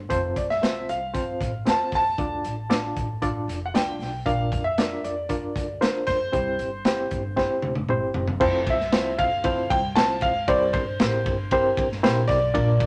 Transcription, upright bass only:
0, 0, Header, 1, 3, 480
1, 0, Start_track
1, 0, Key_signature, -1, "major"
1, 0, Tempo, 518583
1, 96, Time_signature, 4, 2, 24, 8
1, 11904, End_track
2, 0, Start_track
2, 0, Title_t, "Upright bass"
2, 0, Program_c, 0, 32
2, 100, Note_on_c, 0, 29, 99
2, 304, Note_off_c, 0, 29, 0
2, 336, Note_on_c, 0, 36, 73
2, 748, Note_off_c, 0, 36, 0
2, 827, Note_on_c, 0, 36, 86
2, 1029, Note_off_c, 0, 36, 0
2, 1304, Note_on_c, 0, 33, 83
2, 1507, Note_off_c, 0, 33, 0
2, 1548, Note_on_c, 0, 40, 89
2, 1749, Note_off_c, 0, 40, 0
2, 1782, Note_on_c, 0, 39, 84
2, 1986, Note_off_c, 0, 39, 0
2, 2021, Note_on_c, 0, 38, 96
2, 2226, Note_off_c, 0, 38, 0
2, 2268, Note_on_c, 0, 33, 78
2, 2675, Note_off_c, 0, 33, 0
2, 2746, Note_on_c, 0, 33, 91
2, 3155, Note_off_c, 0, 33, 0
2, 3221, Note_on_c, 0, 29, 86
2, 3426, Note_off_c, 0, 29, 0
2, 3465, Note_on_c, 0, 36, 82
2, 3669, Note_off_c, 0, 36, 0
2, 3695, Note_on_c, 0, 35, 86
2, 3903, Note_off_c, 0, 35, 0
2, 3944, Note_on_c, 0, 34, 92
2, 4148, Note_off_c, 0, 34, 0
2, 4185, Note_on_c, 0, 41, 81
2, 4595, Note_off_c, 0, 41, 0
2, 4670, Note_on_c, 0, 41, 74
2, 4872, Note_off_c, 0, 41, 0
2, 5144, Note_on_c, 0, 38, 94
2, 5349, Note_off_c, 0, 38, 0
2, 5623, Note_on_c, 0, 41, 87
2, 5829, Note_off_c, 0, 41, 0
2, 5865, Note_on_c, 0, 36, 112
2, 6070, Note_off_c, 0, 36, 0
2, 6095, Note_on_c, 0, 31, 73
2, 6510, Note_off_c, 0, 31, 0
2, 6587, Note_on_c, 0, 31, 95
2, 6894, Note_off_c, 0, 31, 0
2, 7059, Note_on_c, 0, 28, 78
2, 7164, Note_off_c, 0, 28, 0
2, 7186, Note_on_c, 0, 31, 80
2, 7288, Note_off_c, 0, 31, 0
2, 7304, Note_on_c, 0, 31, 82
2, 7509, Note_off_c, 0, 31, 0
2, 7538, Note_on_c, 0, 30, 94
2, 7746, Note_off_c, 0, 30, 0
2, 7781, Note_on_c, 0, 29, 107
2, 7987, Note_off_c, 0, 29, 0
2, 8027, Note_on_c, 0, 36, 82
2, 8435, Note_off_c, 0, 36, 0
2, 8511, Note_on_c, 0, 38, 95
2, 8917, Note_off_c, 0, 38, 0
2, 8983, Note_on_c, 0, 36, 107
2, 9187, Note_off_c, 0, 36, 0
2, 9223, Note_on_c, 0, 36, 91
2, 9427, Note_off_c, 0, 36, 0
2, 9464, Note_on_c, 0, 37, 85
2, 9668, Note_off_c, 0, 37, 0
2, 9704, Note_on_c, 0, 36, 110
2, 9907, Note_off_c, 0, 36, 0
2, 9941, Note_on_c, 0, 31, 88
2, 10145, Note_off_c, 0, 31, 0
2, 10187, Note_on_c, 0, 33, 110
2, 10388, Note_off_c, 0, 33, 0
2, 10422, Note_on_c, 0, 31, 100
2, 10830, Note_off_c, 0, 31, 0
2, 10902, Note_on_c, 0, 31, 96
2, 11104, Note_off_c, 0, 31, 0
2, 11140, Note_on_c, 0, 34, 98
2, 11343, Note_off_c, 0, 34, 0
2, 11377, Note_on_c, 0, 35, 107
2, 11581, Note_off_c, 0, 35, 0
2, 11619, Note_on_c, 0, 34, 110
2, 11822, Note_off_c, 0, 34, 0
2, 11851, Note_on_c, 0, 41, 94
2, 11904, Note_off_c, 0, 41, 0
2, 11904, End_track
3, 0, Start_track
3, 0, Title_t, "Muted upright bass strokes"
3, 1195, Note_on_c, 9, 29, 50
3, 1288, Note_off_c, 9, 29, 0
3, 5030, Note_on_c, 9, 29, 46
3, 5123, Note_off_c, 9, 29, 0
3, 5504, Note_on_c, 9, 29, 41
3, 5597, Note_off_c, 9, 29, 0
3, 11904, End_track
0, 0, End_of_file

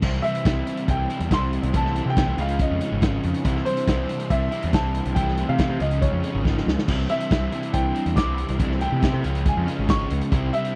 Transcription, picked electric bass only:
0, 0, Header, 1, 2, 480
1, 0, Start_track
1, 0, Tempo, 429185
1, 32, Time_signature, 4, 2, 24, 8
1, 12027, End_track
2, 0, Start_track
2, 0, Title_t, "Picked electric bass"
2, 0, Program_c, 0, 34
2, 28, Note_on_c, 0, 36, 109
2, 223, Note_off_c, 0, 36, 0
2, 506, Note_on_c, 0, 36, 83
2, 701, Note_off_c, 0, 36, 0
2, 990, Note_on_c, 0, 36, 83
2, 1182, Note_off_c, 0, 36, 0
2, 1345, Note_on_c, 0, 40, 82
2, 1442, Note_off_c, 0, 40, 0
2, 1467, Note_on_c, 0, 36, 82
2, 1757, Note_off_c, 0, 36, 0
2, 1824, Note_on_c, 0, 36, 79
2, 1921, Note_off_c, 0, 36, 0
2, 1945, Note_on_c, 0, 36, 115
2, 2235, Note_off_c, 0, 36, 0
2, 2301, Note_on_c, 0, 48, 85
2, 2495, Note_off_c, 0, 48, 0
2, 2545, Note_on_c, 0, 36, 96
2, 2640, Note_off_c, 0, 36, 0
2, 2658, Note_on_c, 0, 37, 93
2, 2950, Note_off_c, 0, 37, 0
2, 3030, Note_on_c, 0, 41, 87
2, 3123, Note_off_c, 0, 41, 0
2, 3266, Note_on_c, 0, 32, 80
2, 3555, Note_off_c, 0, 32, 0
2, 3629, Note_on_c, 0, 41, 90
2, 3722, Note_off_c, 0, 41, 0
2, 3857, Note_on_c, 0, 36, 112
2, 4052, Note_off_c, 0, 36, 0
2, 4333, Note_on_c, 0, 36, 94
2, 4529, Note_off_c, 0, 36, 0
2, 4811, Note_on_c, 0, 36, 95
2, 5008, Note_off_c, 0, 36, 0
2, 5189, Note_on_c, 0, 40, 83
2, 5281, Note_off_c, 0, 40, 0
2, 5293, Note_on_c, 0, 36, 89
2, 5586, Note_off_c, 0, 36, 0
2, 5657, Note_on_c, 0, 36, 81
2, 5753, Note_off_c, 0, 36, 0
2, 5773, Note_on_c, 0, 36, 107
2, 6066, Note_off_c, 0, 36, 0
2, 6142, Note_on_c, 0, 48, 85
2, 6334, Note_off_c, 0, 48, 0
2, 6373, Note_on_c, 0, 48, 99
2, 6471, Note_off_c, 0, 48, 0
2, 6487, Note_on_c, 0, 37, 88
2, 6782, Note_off_c, 0, 37, 0
2, 6855, Note_on_c, 0, 41, 87
2, 6952, Note_off_c, 0, 41, 0
2, 7098, Note_on_c, 0, 32, 80
2, 7389, Note_off_c, 0, 32, 0
2, 7457, Note_on_c, 0, 37, 80
2, 7554, Note_off_c, 0, 37, 0
2, 7697, Note_on_c, 0, 36, 105
2, 7891, Note_off_c, 0, 36, 0
2, 8173, Note_on_c, 0, 36, 86
2, 8369, Note_off_c, 0, 36, 0
2, 8653, Note_on_c, 0, 36, 90
2, 8850, Note_off_c, 0, 36, 0
2, 9014, Note_on_c, 0, 40, 83
2, 9113, Note_off_c, 0, 40, 0
2, 9135, Note_on_c, 0, 36, 84
2, 9429, Note_off_c, 0, 36, 0
2, 9496, Note_on_c, 0, 36, 82
2, 9595, Note_off_c, 0, 36, 0
2, 9614, Note_on_c, 0, 36, 109
2, 9909, Note_off_c, 0, 36, 0
2, 9977, Note_on_c, 0, 48, 86
2, 10174, Note_off_c, 0, 48, 0
2, 10217, Note_on_c, 0, 48, 94
2, 10316, Note_off_c, 0, 48, 0
2, 10342, Note_on_c, 0, 37, 96
2, 10635, Note_off_c, 0, 37, 0
2, 10706, Note_on_c, 0, 41, 97
2, 10802, Note_off_c, 0, 41, 0
2, 10947, Note_on_c, 0, 32, 81
2, 11239, Note_off_c, 0, 32, 0
2, 11310, Note_on_c, 0, 37, 83
2, 11406, Note_off_c, 0, 37, 0
2, 11546, Note_on_c, 0, 36, 110
2, 11742, Note_off_c, 0, 36, 0
2, 12027, End_track
0, 0, End_of_file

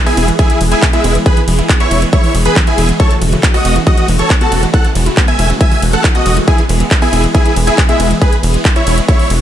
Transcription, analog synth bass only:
0, 0, Header, 1, 2, 480
1, 0, Start_track
1, 0, Key_signature, 4, "major"
1, 0, Tempo, 434783
1, 1390, Time_signature, 4, 2, 24, 8
1, 10389, End_track
2, 0, Start_track
2, 0, Title_t, "Analog synth bass"
2, 0, Program_c, 0, 38
2, 190, Note_on_c, 0, 28, 103
2, 346, Note_off_c, 0, 28, 0
2, 670, Note_on_c, 0, 28, 90
2, 826, Note_off_c, 0, 28, 0
2, 1151, Note_on_c, 0, 28, 103
2, 1306, Note_off_c, 0, 28, 0
2, 1630, Note_on_c, 0, 28, 101
2, 1786, Note_off_c, 0, 28, 0
2, 2111, Note_on_c, 0, 28, 105
2, 2266, Note_off_c, 0, 28, 0
2, 2590, Note_on_c, 0, 28, 94
2, 2746, Note_off_c, 0, 28, 0
2, 3070, Note_on_c, 0, 28, 97
2, 3225, Note_off_c, 0, 28, 0
2, 3550, Note_on_c, 0, 28, 105
2, 3706, Note_off_c, 0, 28, 0
2, 4029, Note_on_c, 0, 28, 101
2, 4185, Note_off_c, 0, 28, 0
2, 4509, Note_on_c, 0, 28, 89
2, 4665, Note_off_c, 0, 28, 0
2, 4990, Note_on_c, 0, 28, 94
2, 5146, Note_off_c, 0, 28, 0
2, 5470, Note_on_c, 0, 28, 103
2, 5625, Note_off_c, 0, 28, 0
2, 5950, Note_on_c, 0, 28, 99
2, 6105, Note_off_c, 0, 28, 0
2, 6429, Note_on_c, 0, 28, 96
2, 6585, Note_off_c, 0, 28, 0
2, 6910, Note_on_c, 0, 28, 97
2, 7066, Note_off_c, 0, 28, 0
2, 7390, Note_on_c, 0, 28, 101
2, 7546, Note_off_c, 0, 28, 0
2, 7871, Note_on_c, 0, 28, 98
2, 8026, Note_off_c, 0, 28, 0
2, 8351, Note_on_c, 0, 28, 90
2, 8506, Note_off_c, 0, 28, 0
2, 8830, Note_on_c, 0, 28, 97
2, 8985, Note_off_c, 0, 28, 0
2, 9309, Note_on_c, 0, 28, 102
2, 9465, Note_off_c, 0, 28, 0
2, 9791, Note_on_c, 0, 28, 98
2, 9946, Note_off_c, 0, 28, 0
2, 10270, Note_on_c, 0, 28, 96
2, 10389, Note_off_c, 0, 28, 0
2, 10389, End_track
0, 0, End_of_file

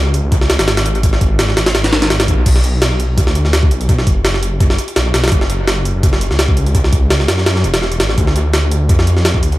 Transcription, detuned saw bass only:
0, 0, Header, 1, 2, 480
1, 0, Start_track
1, 0, Tempo, 357143
1, 1388, Time_signature, 4, 2, 24, 8
1, 12882, End_track
2, 0, Start_track
2, 0, Title_t, "Detuned saw bass"
2, 0, Program_c, 0, 39
2, 0, Note_on_c, 0, 37, 97
2, 297, Note_off_c, 0, 37, 0
2, 317, Note_on_c, 0, 37, 101
2, 776, Note_off_c, 0, 37, 0
2, 796, Note_on_c, 0, 32, 91
2, 2090, Note_off_c, 0, 32, 0
2, 2109, Note_on_c, 0, 32, 86
2, 3176, Note_off_c, 0, 32, 0
2, 3195, Note_on_c, 0, 35, 91
2, 3296, Note_off_c, 0, 35, 0
2, 3307, Note_on_c, 0, 35, 96
2, 4267, Note_on_c, 0, 38, 85
2, 4287, Note_off_c, 0, 35, 0
2, 4987, Note_on_c, 0, 35, 89
2, 5007, Note_off_c, 0, 38, 0
2, 5468, Note_on_c, 0, 30, 97
2, 5488, Note_off_c, 0, 35, 0
2, 6410, Note_off_c, 0, 30, 0
2, 6668, Note_on_c, 0, 35, 89
2, 6886, Note_off_c, 0, 35, 0
2, 6907, Note_on_c, 0, 35, 102
2, 7125, Note_off_c, 0, 35, 0
2, 7148, Note_on_c, 0, 30, 98
2, 7976, Note_off_c, 0, 30, 0
2, 7996, Note_on_c, 0, 30, 96
2, 8456, Note_off_c, 0, 30, 0
2, 8476, Note_on_c, 0, 37, 89
2, 9770, Note_off_c, 0, 37, 0
2, 9790, Note_on_c, 0, 42, 87
2, 10272, Note_on_c, 0, 28, 85
2, 10292, Note_off_c, 0, 42, 0
2, 10751, Note_on_c, 0, 32, 93
2, 10771, Note_off_c, 0, 28, 0
2, 10967, Note_off_c, 0, 32, 0
2, 10991, Note_on_c, 0, 38, 99
2, 11951, Note_on_c, 0, 41, 85
2, 11971, Note_off_c, 0, 38, 0
2, 12668, Note_on_c, 0, 38, 89
2, 12688, Note_off_c, 0, 41, 0
2, 12882, Note_off_c, 0, 38, 0
2, 12882, End_track
0, 0, End_of_file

